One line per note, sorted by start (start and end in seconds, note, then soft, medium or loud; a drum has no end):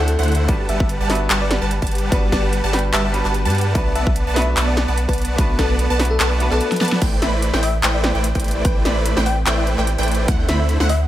0.00 0.17 D2 loud
0.00 0.51 A3 loud
0.00 0.51 C4 medium
0.00 0.48 D4 medium
0.00 0.49 F#4 medium
0.00 0.53 A4 medium
0.00 0.51 C5 loud
0.08 closed hi-hat medium
0.19 0.50 D2 loud
0.19 0.46 D3 loud
0.19 0.46 A3 medium
0.19 0.46 E4 loud
0.19 0.46 C5 medium
0.19 0.46 F#5 loud
0.19 closed hi-hat medium
0.23 closed hi-hat medium
0.28 closed hi-hat soft
0.32 closed hi-hat medium
0.35 closed hi-hat medium
0.46 0.67 G1 medium
0.46 1.06 G3 medium
0.46 0.67 G3 medium
0.46 1.07 B3 medium
0.46 1.08 D4 medium
0.46 1.08 F#4 medium
0.46 0.67 G4 medium
0.46 0.67 B4 medium
0.46 0.67 F#5 medium
0.46 0.67 A5 loud
0.46 0.67 A5 medium
0.46 kick loud
0.46 closed hi-hat medium
0.50 1.09 B4 medium
0.69 0.98 G1 loud
0.69 0.98 G3 medium
0.69 0.98 G4 medium
0.69 0.98 B4 medium
0.69 0.76 E5 loud
0.69 0.98 F#5 medium
0.69 0.98 A5 medium
0.69 0.98 A5 loud
0.69 closed hi-hat medium
0.80 0.86 E5 medium
0.80 kick loud
0.89 closed hi-hat medium
1.01 1.28 G1 loud
1.01 1.11 G3 loud
1.01 1.11 G4 loud
1.01 1.11 B4 medium
1.01 1.10 F#5 medium
1.01 1.10 A5 loud
1.01 1.11 A5 loud
1.08 2.08 G3 medium
1.08 2.09 B3 medium
1.08 2.10 D4 medium
1.08 2.10 F#4 medium
1.08 2.11 B4 loud
1.08 1.21 E5 medium
1.08 snare medium
1.08 open hi-hat medium
1.15 closed hi-hat medium
1.30 1.60 G1 loud
1.30 1.59 G3 medium
1.30 1.59 G4 medium
1.30 1.59 B4 medium
1.30 1.59 F#5 medium
1.30 1.59 A5 loud
1.30 clap loud
1.30 closed hi-hat medium
1.41 1.47 D5 medium
1.51 1.58 D5 medium
1.51 snare medium
1.51 closed hi-hat medium
1.62 1.80 G1 loud
1.62 1.72 G3 medium
1.62 1.72 G4 medium
1.62 1.72 B4 medium
1.62 1.72 F#5 medium
1.62 1.72 A5 medium
1.71 closed hi-hat medium
1.82 2.10 G1 loud
1.82 2.10 G3 loud
1.82 2.10 G4 medium
1.82 2.10 B4 loud
1.82 2.10 F#5 medium
1.82 2.10 A5 loud
1.82 kick medium
1.82 closed hi-hat soft
1.87 closed hi-hat medium
1.92 closed hi-hat soft
1.95 closed hi-hat medium
1.98 closed hi-hat medium
2.10 2.30 G1 medium
2.10 2.70 G3 medium
2.10 2.30 G3 medium
2.10 2.70 B3 medium
2.10 2.71 D4 medium
2.10 2.71 F#4 medium
2.10 2.30 G4 medium
2.10 2.30 B4 medium
2.10 2.23 B4 medium
2.10 2.30 A5 loud
2.10 kick loud
2.10 closed hi-hat medium
2.14 2.72 B4 loud
2.32 2.62 G1 loud
2.32 2.61 G3 medium
2.32 2.61 G4 medium
2.32 2.61 B4 medium
2.32 2.43 D5 medium
2.32 2.61 F#5 medium
2.32 2.61 A5 loud
2.32 kick medium
2.32 snare medium
2.32 closed hi-hat medium
2.53 closed hi-hat medium
2.64 2.92 G1 loud
2.64 2.74 G3 loud
2.64 2.74 G4 medium
2.64 2.74 B4 loud
2.64 2.74 F#5 medium
2.64 2.74 A5 loud
2.72 3.10 G3 medium
2.72 3.11 B3 medium
2.72 3.12 D4 medium
2.72 3.12 F#4 medium
2.72 3.12 B4 medium
2.72 2.84 G5 medium
2.72 snare medium
2.72 open hi-hat loud
2.79 closed hi-hat medium
2.93 3.23 G1 loud
2.93 3.22 G3 medium
2.93 3.22 G4 medium
2.93 3.22 B4 medium
2.93 3.01 E5 loud
2.93 3.22 F#5 medium
2.93 3.22 A5 loud
2.93 clap loud
2.93 closed hi-hat medium
3.05 3.11 E5 medium
3.12 3.72 G3 loud
3.12 3.72 B3 medium
3.12 3.73 D4 medium
3.12 3.73 F#4 medium
3.12 3.74 B4 loud
3.12 closed hi-hat medium
3.25 3.47 G1 loud
3.25 3.35 G3 medium
3.25 3.35 G4 medium
3.25 3.35 B4 medium
3.25 3.35 F#5 medium
3.25 3.35 A5 medium
3.25 clap soft
3.34 closed hi-hat medium
3.45 3.77 G2 loud
3.45 3.73 G3 loud
3.45 3.73 G4 medium
3.45 3.73 B4 medium
3.45 3.73 F#5 medium
3.45 3.73 A5 loud
3.45 closed hi-hat soft
3.50 closed hi-hat medium
3.55 closed hi-hat soft
3.58 closed hi-hat medium
3.61 closed hi-hat medium
3.73 3.94 B1 loud
3.73 4.33 A3 medium
3.73 4.34 B3 medium
3.73 3.93 B3 medium
3.73 4.34 D4 medium
3.73 4.35 F#4 medium
3.73 3.93 B4 medium
3.73 3.93 A5 loud
3.73 kick loud
3.73 closed hi-hat medium
3.77 4.35 B4 medium
3.95 4.25 B1 medium
3.95 4.24 B3 medium
3.95 4.24 B4 medium
3.95 4.25 D5 medium
3.95 4.03 E5 medium
3.95 4.24 F#5 medium
3.95 4.24 A5 loud
3.95 closed hi-hat medium
4.07 kick loud
4.16 closed hi-hat medium
4.27 4.55 B1 medium
4.27 4.37 B3 loud
4.27 4.37 B4 medium
4.27 4.37 D5 medium
4.27 4.37 F#5 medium
4.27 4.37 A5 loud
4.34 5.35 A3 loud
4.34 5.36 B3 medium
4.34 5.36 D4 medium
4.34 5.37 F#4 medium
4.34 5.37 B4 loud
4.34 4.47 E5 loud
4.34 snare medium
4.34 open hi-hat loud
4.42 closed hi-hat medium
4.57 4.86 B1 loud
4.57 4.86 B3 loud
4.57 4.86 B4 medium
4.57 4.86 D5 medium
4.57 4.86 F#5 medium
4.57 4.86 A5 loud
4.57 clap loud
4.57 closed hi-hat medium
4.68 4.74 D5 medium
4.77 4.84 D5 medium
4.77 snare medium
4.77 closed hi-hat medium
4.88 5.06 B1 loud
4.88 4.98 B3 medium
4.88 4.98 B4 medium
4.88 4.98 D5 medium
4.88 4.98 F#5 medium
4.88 4.98 A5 medium
4.98 closed hi-hat medium
5.08 5.37 B1 loud
5.08 5.36 B3 loud
5.08 5.18 B4 medium
5.08 5.36 B4 medium
5.08 5.36 D5 loud
5.08 5.36 F#5 medium
5.08 5.36 A5 loud
5.08 kick medium
5.08 closed hi-hat medium
5.13 closed hi-hat medium
5.18 closed hi-hat soft
5.22 closed hi-hat medium
5.25 closed hi-hat medium
5.36 5.57 B1 loud
5.36 5.96 A3 medium
5.36 5.97 B3 medium
5.36 5.57 B3 medium
5.36 5.97 D4 medium
5.36 5.98 F#4 medium
5.36 5.57 B4 medium
5.36 5.57 D5 medium
5.36 5.57 F#5 medium
5.36 5.57 A5 loud
5.36 kick loud
5.36 closed hi-hat medium
5.40 5.98 B4 loud
5.59 5.88 B1 loud
5.59 5.88 B3 medium
5.59 6.00 A4 medium
5.59 5.88 B4 medium
5.59 5.88 D5 medium
5.59 5.88 F#5 medium
5.59 5.88 A5 medium
5.59 5.88 A5 loud
5.59 kick medium
5.59 snare medium
5.59 closed hi-hat medium
5.79 closed hi-hat medium
5.90 6.18 B1 loud
5.90 6.00 B3 loud
5.90 6.00 B4 loud
5.90 6.00 D5 medium
5.90 6.00 F#5 medium
5.90 6.00 A5 loud
5.98 6.37 A3 medium
5.98 6.38 B3 medium
5.98 6.38 D4 medium
5.98 6.38 F#4 medium
5.98 6.39 B4 medium
5.98 snare medium
5.98 open hi-hat loud
6.05 closed hi-hat medium
6.11 6.17 A4 loud
6.20 6.49 B1 loud
6.20 6.49 B3 medium
6.20 6.27 A4 medium
6.20 6.49 B4 medium
6.20 6.49 D5 medium
6.20 6.49 F#5 medium
6.20 6.49 A5 loud
6.20 clap loud
6.20 closed hi-hat medium
6.38 6.98 A3 medium
6.38 6.99 B3 medium
6.38 6.99 D4 medium
6.38 7.00 F#4 medium
6.38 7.00 B4 loud
6.38 closed hi-hat medium
6.51 6.61 B1 loud
6.51 6.69 B3 medium
6.51 7.02 A4 medium
6.51 6.69 B4 medium
6.51 6.69 D5 medium
6.51 6.69 F#5 medium
6.51 6.69 A5 medium
6.51 clap soft
6.61 closed hi-hat medium
6.72 snare medium
6.72 closed hi-hat medium
6.76 closed hi-hat medium
6.81 6.99 B3 loud
6.81 6.99 B4 medium
6.81 6.99 D5 medium
6.81 6.99 F#5 medium
6.81 6.99 A5 loud
6.81 snare medium
6.81 closed hi-hat soft
6.85 closed hi-hat medium
6.88 closed hi-hat medium
6.92 snare medium
7.02 7.20 A1 loud
7.02 7.20 A3 medium
7.02 11.08 C4 medium
7.02 7.20 E4 medium
7.02 10.25 G4 medium
7.02 10.25 B4 medium
7.02 10.25 D5 medium
7.02 7.20 G5 loud
7.02 kick loud
7.02 closed hi-hat medium
7.02 crash loud
7.22 7.51 A1 loud
7.22 7.51 A3 medium
7.22 7.51 E4 medium
7.22 7.51 B4 medium
7.22 7.51 C5 medium
7.22 7.51 D5 medium
7.22 7.29 E5 medium
7.22 7.51 B5 loud
7.22 snare medium
7.22 closed hi-hat medium
7.33 7.39 E5 medium
7.42 closed hi-hat medium
7.54 7.81 A1 loud
7.54 7.64 A3 loud
7.54 7.64 E4 medium
7.54 7.64 B4 medium
7.54 7.64 C5 medium
7.54 7.64 D5 medium
7.54 7.64 G5 loud
7.54 snare medium
7.63 7.74 E5 loud
7.63 open hi-hat loud
7.83 8.13 A1 medium
7.83 8.12 A3 medium
7.83 8.12 E4 medium
7.83 8.12 B4 medium
7.83 8.12 C5 medium
7.83 8.12 D5 medium
7.83 8.12 G5 loud
7.83 clap loud
7.83 closed hi-hat medium
7.94 8.00 D5 medium
8.04 8.11 D5 medium
8.04 snare medium
8.04 closed hi-hat medium
8.15 8.33 A1 loud
8.15 8.25 A3 medium
8.15 8.25 E4 medium
8.15 8.25 B4 medium
8.15 8.25 C5 medium
8.15 8.25 D5 medium
8.15 8.25 G5 medium
8.24 closed hi-hat medium
8.35 8.63 A1 loud
8.35 8.63 A3 loud
8.35 8.63 E4 medium
8.35 8.63 B4 medium
8.35 8.63 C5 medium
8.35 8.63 D5 medium
8.35 8.63 G5 loud
8.35 kick medium
8.35 closed hi-hat medium
8.40 closed hi-hat medium
8.44 closed hi-hat soft
8.48 closed hi-hat medium
8.51 closed hi-hat medium
8.65 8.84 A1 loud
8.65 8.83 A3 medium
8.65 8.83 E4 medium
8.65 8.76 B4 medium
8.65 8.83 B4 medium
8.65 8.83 C5 medium
8.65 8.83 D5 medium
8.65 8.83 G5 loud
8.65 kick loud
8.65 closed hi-hat medium
8.85 9.15 A1 loud
8.85 9.14 A3 medium
8.85 9.14 E4 medium
8.85 9.14 B4 medium
8.85 9.14 C5 medium
8.85 9.14 D5 medium
8.85 8.96 D5 loud
8.85 9.14 B5 loud
8.85 snare medium
8.85 closed hi-hat medium
9.06 closed hi-hat medium
9.17 9.45 A1 loud
9.17 9.27 A3 loud
9.17 9.27 E4 medium
9.17 9.27 B4 medium
9.17 9.27 C5 medium
9.17 9.27 D5 medium
9.17 9.27 G5 loud
9.17 snare medium
9.26 9.37 G5 medium
9.26 open hi-hat loud
9.46 9.76 A1 loud
9.46 9.75 A3 medium
9.46 9.75 E4 medium
9.46 9.76 B4 medium
9.46 9.76 C5 medium
9.46 9.76 D5 medium
9.46 9.54 E5 loud
9.46 9.75 G5 loud
9.46 9.76 G5 loud
9.46 clap loud
9.46 closed hi-hat medium
9.58 9.64 E5 medium
9.67 closed hi-hat medium
9.78 9.96 A1 loud
9.78 9.88 A3 medium
9.78 9.88 E4 medium
9.78 9.88 B4 medium
9.78 9.88 C5 medium
9.78 9.88 D5 medium
9.78 9.88 G5 medium
9.78 clap soft
9.87 closed hi-hat medium
9.98 10.26 A1 loud
9.98 10.26 A3 loud
9.98 10.26 E4 medium
9.98 10.26 B4 medium
9.98 10.26 C5 medium
9.98 10.26 D5 medium
9.98 10.26 G5 loud
9.98 closed hi-hat medium
10.03 closed hi-hat medium
10.08 closed hi-hat medium
10.12 closed hi-hat medium
10.15 closed hi-hat medium
10.28 10.47 D2 loud
10.28 10.46 D3 medium
10.28 10.47 A3 medium
10.28 10.46 E4 medium
10.28 11.08 F#4 medium
10.28 11.08 A4 medium
10.28 10.46 C5 medium
10.28 11.08 D5 medium
10.28 10.46 F#5 loud
10.28 10.47 F#5 loud
10.28 kick loud
10.28 closed hi-hat medium
10.49 10.78 D2 medium
10.49 10.78 D3 medium
10.49 10.78 A3 medium
10.49 10.78 E4 medium
10.49 10.78 C5 medium
10.49 10.56 E5 medium
10.49 10.77 B5 loud
10.49 10.78 B5 loud
10.49 snare medium
10.49 closed hi-hat medium
10.60 10.66 E5 medium
10.69 closed hi-hat medium
10.80 11.08 D2 loud
10.80 10.90 D3 loud
10.80 10.90 A3 medium
10.80 10.90 E4 medium
10.80 10.90 C5 medium
10.80 10.90 F#5 loud
10.80 snare medium
10.89 11.00 E5 loud
10.89 open hi-hat medium